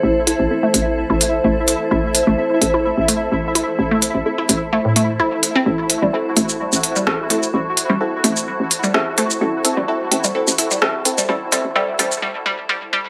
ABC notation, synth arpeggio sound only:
X:1
M:4/4
L:1/16
Q:"Swing 16ths" 1/4=128
K:Ador
V:1 name="Synth arpeggio sound"
z2 E z2 A, z3 E z2 A, z3 | E z2 A, z3 E z2 A, z3 E z | z A, z3 E z2 A, z A, z E z2 C | z3 G, z2 A, z4 G, z2 A, z |
z3 G, z2 A, z4 G, z2 A, z | z3 G, z3 G, z3 G, z3 G, | G, z G, z G, z G, z G, z G, z G, z G, z |]